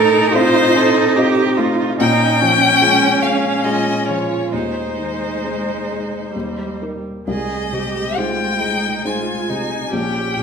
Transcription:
Already playing: grand piano A2 A3, viola D#4, cello A4, violin A#4
0.33 grand piano C4 F4 D#5, cello F4, violin C5
0.75 grand piano C4, cello A4
1.16 grand piano C4 F4 D#5, cello G4
1.57 grand piano A3, cello F4
1.99 grand piano A#2, viola C#4, cello D#4, violin G5
2.41 grand piano F3, cello C#4
2.81 grand piano G#3 F4 C#5
3.23 grand piano G#3, violin F5
3.64 grand piano G#3 F4 C#5, cello F4, violin D#5
4.06 grand piano F3, violin C#5
4.53 grand piano D#2, viola G#3, cello D#4, violin C5
4.98 grand piano D#3
5.44 grand piano G#3 D#4 C5
5.90 grand piano G#3
6.34 grand piano D#2, viola G3
6.82 grand piano D#4 A#4
7.27 grand piano C2, viola G#3, cello G#4, violin D#5
7.73 grand piano C3, cello G4
8.16 grand piano G#3 D#4 C5, cello F4, violin G5
8.60 grand piano G#3, cello D#4
9.05 grand piano G#3 D#4 C5, cello F4, violin G#5
9.49 grand piano C3, cello D#4
9.91 grand piano A#1, viola C#4, cello G4, violin G5
10.36 grand piano A#2

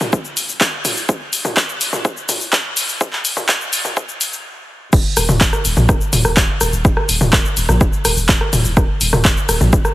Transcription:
0.01 mid tom, shaker
0.13 kick, shaker
0.25 shaker
0.37 open hi-hat, shaker
0.49 shaker
0.61 kick, clap, shaker
0.85 open hi-hat, mid tom, shaker
0.97 shaker
1.09 kick, shaker
1.33 open hi-hat, shaker
1.45 mid tom, shaker
1.57 kick, clap, shaker
1.69 shaker
1.81 open hi-hat, shaker
1.93 mid tom, shaker
2.05 kick, shaker
2.17 shaker
2.29 open hi-hat, mid tom, shaker
2.41 shaker
2.53 kick, clap, shaker
2.77 open hi-hat, shaker
2.89 shaker
3.01 kick, shaker
3.13 clap
3.25 open hi-hat, shaker
3.37 mid tom, shaker
3.49 kick, clap, shaker
3.61 shaker
3.73 open hi-hat, shaker
3.85 mid tom, shaker
3.97 kick, shaker
4.09 shaker
4.21 open hi-hat, shaker
4.33 shaker
4.93 analog synth bass D#1, kick, crash, shaker
5.17 analog synth bass D#1, cross-stick, open hi-hat, shaker
5.29 analog synth bass D#1, mid tom, shaker
5.41 analog synth bass D#1, kick, clap, shaker
5.53 cross-stick, shaker
5.65 analog synth bass D#1, open hi-hat, shaker
5.77 analog synth bass A#1, mid tom, shaker
5.89 analog synth bass D#1, kick, cross-stick, shaker
6.01 shaker
6.13 analog synth bass D#1, open hi-hat, mid tom, shaker
6.25 analog synth bass D#1, cross-stick, shaker
6.37 analog synth bass D#1, kick, clap, shaker
6.61 analog synth bass D#1, cross-stick, open hi-hat, shaker
6.73 analog synth bass D#1, shaker
6.85 analog synth bass D#1, kick, shaker
6.97 cross-stick
7.09 analog synth bass D#1, open hi-hat, shaker
7.21 analog synth bass D#1, mid tom, shaker
7.33 analog synth bass D#1, kick, cross-stick, clap, shaker
7.45 shaker
7.57 analog synth bass D#1, open hi-hat, shaker
7.69 analog synth bass A#1, cross-stick, mid tom, shaker
7.81 analog synth bass D#1, kick, shaker
7.93 shaker
8.05 analog synth bass D#1, cross-stick, open hi-hat, shaker
8.17 analog synth bass D#1, shaker
8.29 analog synth bass D#1, kick, clap, shaker
8.41 cross-stick
8.53 analog synth bass D#1, open hi-hat, mid tom, shaker
8.65 analog synth bass D#1, shaker
8.77 analog synth bass D#1, kick, cross-stick, shaker
9.01 analog synth bass D#1, open hi-hat, shaker
9.13 analog synth bass D#1, cross-stick, mid tom, shaker
9.25 analog synth bass D#1, kick, clap, shaker
9.37 shaker
9.49 analog synth bass D#1, cross-stick, open hi-hat, shaker
9.61 analog synth bass A#1, mid tom, shaker
9.73 analog synth bass D#1, kick, shaker
9.85 cross-stick, shaker

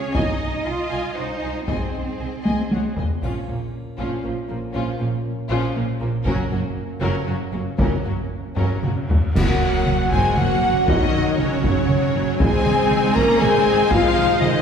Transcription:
Already playing: cello section C#4, viola section C#5, violin section C#5
0.13 double bass section C2, french horn section G#3 D#4, cello section D#4, violin section D#5 G#5, viola section D#5, taiko
0.64 double bass section C2, cello section F4, violin section D#5 F5 G#5
0.90 double bass section C2, violin section D#5 G#5
1.16 double bass section C2, cello section D#4, viola section C5, violin section C#5 D#5 F#5
1.42 double bass section C2, violin section D#5 G#5
1.67 double bass section C2, cello section C4, viola section G#4, violin section C5 D#5 G#5, taiko
2.20 double bass section C2, violin section D#5 G#5
2.45 double bass section C2, violin section D#5 G#5, taiko high
2.71 double bass section C2, violin section C#5 F#5, taiko high
2.97 double bass section C2, violin section D#5 G#5, taiko low
3.22 double bass section A#1, cello section A#2, viola section F3, french horn section A#3 C#4, violin section C#4 F4, taiko, triangle
3.47 double bass section A#1, cello section A#2, viola section F3, violin section A#3 C#4
3.98 double bass section A#1, cello section A#2, viola section F3, violin section C#4 F4, taiko
4.24 double bass section A#1, cello section A#2, viola section F3, violin section A#3 C#4
4.48 double bass section A#1, cello section A#2, viola section F3, violin section A#3
4.73 double bass section A#1, cello section A#2, viola section F3, violin section C#4 F4
4.99 double bass section A#1, cello section A#2, viola section F3, violin section A#3 C#4
5.50 double bass section A#1, cello section A#2, viola section F3, violin section C#4 F4
5.75 double bass section A#1, cello section A#2, viola section F3, violin section A#3 C#4
6.00 double bass section A#1, cello section A#2, viola section F3, violin section A#3
6.25 double bass section F#1, cello section F#2, viola section F#3, french horn section A#3 C#4, violin section C#4 A#4, taiko
6.51 double bass section F#1, cello section F#2, viola section F#3, violin section A#3 F#4
7.01 double bass section F#1, cello section F#2, viola section F#3, violin section C#4 A#4
7.27 double bass section F#1, cello section F#2, viola section F#3, violin section A#3 F#4
7.53 double bass section F#1, cello section F#2, viola section F#3, violin section A#3 C#4
7.78 double bass section F#1, cello section F#2, viola section F#3, violin section C#4 A#4, taiko
8.04 double bass section F#1, cello section F#2, viola section F#3, violin section A#3 F#4
8.57 double bass section F#1, cello section F#2, viola section F#3, violin section C#4 A#4, taiko low-mid
8.83 double bass section F#1, cello section F#2, viola section F#3, violin section A#3 F#4, taiko mid
9.09 double bass section F#1, cello section F#2, viola section F#3, violin section A#3 C#4, taiko low
9.35 double bass section F#1, cello section F#3, viola section A#3, string section C#4 A#4 C#5 F#5, french horn section F#4, violin section F#5, flute section F#5, concert bass drum, taiko, crash
9.61 taiko mid
9.86 taiko mid
10.11 double bass section F#1, cello section G#3, viola section C4, french horn section G#4, violin section G#5, flute section G#5, taiko
10.35 double bass section F#1, cello section F#3, viola section A#3, french horn section F#4, violin section F#5, flute section F#5, taiko mid
10.62 double bass section F#1
10.86 double bass section F#1, cello section D#3, viola section F#3, french horn section D#4, violin section D#5, flute section D#5, taiko
11.13 taiko mid
11.38 cello section C#3, viola section F#3, french horn section C#4, violin section C#5, flute section C#5, taiko mid
11.64 double bass section F#1, taiko
11.89 double bass section F#1, taiko mid
12.15 double bass section F#1
12.40 double bass section G#1, cello section G#3, viola section C4, string section D#4 G#4 C5 D#5, french horn section G#4, violin section G#5, flute section G#5, taiko
12.66 taiko mid
12.91 taiko mid
13.14 double bass section G#1, cello section A#3, viola section C#4, french horn section A#4, violin section A#5, flute section A#5, taiko
13.39 double bass section G#1, cello section G#3, viola section C4, french horn section G#4, violin section G#5, flute section G#5, taiko mid
13.67 double bass section G#1
13.91 double bass section G#1, cello section F3, viola section G#3, french horn section F4, violin section F5, flute section F5, taiko
14.17 taiko mid
14.41 cello section D#3, viola section G#3, french horn section D#4, violin section D#5, flute section D#5, taiko mid

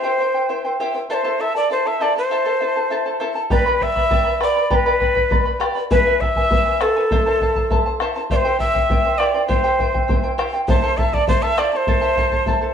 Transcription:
Already playing: quena C5
0.03 charango E4 G4 C5 E5 G5
0.19 charango E4 C5 E5 G5
0.34 charango E4 C5 G5
0.49 charango E4 C5 E5 G5
0.65 charango E4 C5 G5
0.80 charango E4 G4 C5 E5 G5
0.95 charango E4 C5 G5
1.10 charango E4 A4 C5 E5 A5, quena D5
1.14 quena C5
1.24 charango E4 A4 C5 E5 A5
1.40 charango E4 A4 E5 A5, quena E5
1.55 charango E4 A4 A5, quena D5
1.70 charango E4 A4 E5 A5, quena C5
1.85 charango E4 A4 A5, quena E5
2.00 charango E4 A4 C5 E5 A5, quena D5
2.16 charango E4 A4 A5, quena C5
2.31 charango E4 A4 C5 E5 A5
2.45 charango E4 A4 C5 E5 A5
2.60 charango E4 A4 E5 A5
2.76 charango E4 A4 A5
2.90 charango E4 A4 E5 A5
3.06 charango E4 A4 A5
3.20 charango E4 A4 C5 E5 A5
3.35 charango E4 A4 A5
3.50 charango G4 B4 D5 G5 B5, quena B4, bombo low
3.66 charango G4 B4 D5 G5 B5
3.80 charango B4 D5 G5 B5, quena E5, bombo low
3.96 charango B4 D5 B5, bombo low
4.10 charango B4 D5 G5 B5, bombo low
4.25 charango B4 D5 B5
4.40 charango G4 B4 D5 G5 B5, quena D5, bombo rim
4.55 charango B4 D5 B5
4.70 charango G4 B4 D5 G5 B5, quena B4, bombo low
4.86 charango G4 B4 D5 G5 B5
5.00 charango B4 D5 G5 B5, bombo low
5.15 charango B4 D5 B5, bombo low
5.30 charango B4 D5 G5 B5, bombo low
5.45 charango B4 D5 B5
5.60 charango G4 B4 D5 G5 B5, bombo rim
5.75 charango B4 D5 B5
5.91 charango E4 G#4 B4 E5 G#5, quena B4, bombo low
6.06 charango E4 G#4 B4 E5 G#5
6.21 charango E4 B4 E5 G#5, quena E5, bombo low
6.36 charango E4 B4 G#5, bombo low
6.51 charango E4 B4 E5 G#5, bombo low
6.65 charango E4 B4 G#5
6.81 charango E4 G#4 B4 E5 G#5, quena A4, bombo rim
6.96 charango E4 B4 G#5
7.11 charango E4 A4 C5 E5 A5, bombo low
7.26 charango E4 A4 C5 E5 A5
7.41 charango E4 C5 E5 A5, bombo low
7.56 charango E4 C5 A5, bombo low
7.70 charango E4 C5 E5 A5, bombo low
7.86 charango E4 C5 A5
8.00 charango E4 A4 C5 E5 A5, bombo rim
8.16 charango E4 C5 A5
8.30 charango E4 G4 C5 E5 G5, quena D5, bombo low
8.36 quena C5
8.45 charango E4 G4 C5 E5 G5
8.59 charango E4 C5 E5 G5, quena E5, bombo low
8.74 charango E4 C5 G5, bombo low
8.89 charango E4 C5 E5 G5, bombo low
9.05 charango E4 C5 G5
9.18 charango E4 G4 C5 E5 G5, quena D5, bombo rim
9.34 charango E4 C5 G5
9.48 charango E4 G4 C5 E5 G5, quena C5, bombo low
9.64 charango E4 G4 C5 E5 G5
9.79 charango E4 C5 E5 G5, bombo low
9.94 charango E4 C5 G5, bombo low
10.08 charango E4 C5 E5 G5, bombo low
10.24 charango E4 C5 G5
10.38 charango E4 G4 C5 E5 G5, bombo rim
10.53 charango E4 C5 G5
10.68 charango E4 A4 C5 E5 A5, quena C5, bombo low
10.83 charango E4 A4 C5 E5 A5
10.97 charango E4 A4 E5 A5, quena E5, bombo low
11.12 charango E4 A4 A5, quena D5, bombo low
11.27 charango E4 A4 E5 A5, quena C5, bombo low
11.42 charango E4 A4 A5, quena E5
11.57 charango E4 A4 C5 E5 A5, quena D5, bombo rim
11.72 charango E4 A4 A5, quena D5
11.76 quena C5
11.87 charango E4 A4 C5 E5 A5, bombo low
12.01 charango E4 A4 C5 E5 A5
12.17 charango E4 A4 E5 A5, bombo low
12.32 charango E4 A4 A5, bombo low
12.46 charango E4 A4 E5 A5, bombo low
12.61 charango E4 A4 A5

